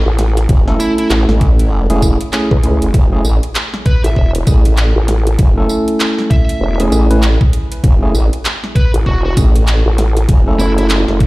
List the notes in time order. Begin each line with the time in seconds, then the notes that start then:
0.06 A1
0.19 snare, closed hi-hat
0.37 closed hi-hat
0.49 F#1, kick, closed hi-hat
0.67 A3 C#4 E4 A4, snare
0.80 E4, closed hi-hat, tambourine
0.98 E4, closed hi-hat
1.10 A1, clap, closed hi-hat
1.29 A1, snare
1.41 kick, closed hi-hat
1.59 closed hi-hat
1.90 E1 A3 C#4 E4 G#4, closed hi-hat
2.02 kick, closed hi-hat, tambourine
2.21 closed hi-hat
2.33 A3 C#4 E4 G#4, clap, closed hi-hat
2.51 C#2, kick
2.63 A3 C#4 E4 G#4, closed hi-hat
2.82 F#1, closed hi-hat
2.94 F#1, kick, closed hi-hat
3.13 A3 C#4 E4 G#4
3.25 A1, tambourine
3.43 closed hi-hat
3.55 clap, closed hi-hat
3.74 snare
3.86 B4, kick, closed hi-hat
4.04 A1 E5, closed hi-hat
4.16 E1, kick
4.35 closed hi-hat
4.47 A1 A3 C#4 E4 G#4, kick, closed hi-hat, tambourine
4.65 closed hi-hat
4.77 clap, closed hi-hat
4.96 A1
5.08 snare, closed hi-hat
5.27 closed hi-hat
5.39 F#1, kick, closed hi-hat
5.57 A3 C#4 E4 A4
5.69 tambourine
5.88 closed hi-hat
6.00 clap, closed hi-hat
6.18 snare
6.31 E5, kick, closed hi-hat
6.49 closed hi-hat
6.61 E1
6.80 A3 C#4 E4 G#4, closed hi-hat
6.92 A1, closed hi-hat, tambourine
7.11 A3 C#4 E4 B4, closed hi-hat
7.23 clap, closed hi-hat
7.41 kick
7.53 closed hi-hat
7.72 closed hi-hat
7.84 F#1, kick, closed hi-hat
8.02 A3 C#4 E4 G#4
8.14 A1, tambourine
8.33 closed hi-hat
8.45 clap, closed hi-hat
8.64 snare
8.76 B4, kick, closed hi-hat
8.94 A1, closed hi-hat
9.06 E1 F#4, kick
9.25 F#4
9.37 A1 A3 C#4 E4 G#4, kick, closed hi-hat, tambourine
9.56 closed hi-hat
9.68 clap, closed hi-hat
9.86 A1
9.98 snare, closed hi-hat
10.17 closed hi-hat
10.29 F#1, kick, closed hi-hat
10.47 A3 C#4 E4 A4
10.59 F#1 E4, tambourine
10.78 E4, closed hi-hat
10.90 clap, closed hi-hat
11.08 F#1, snare
11.20 kick, closed hi-hat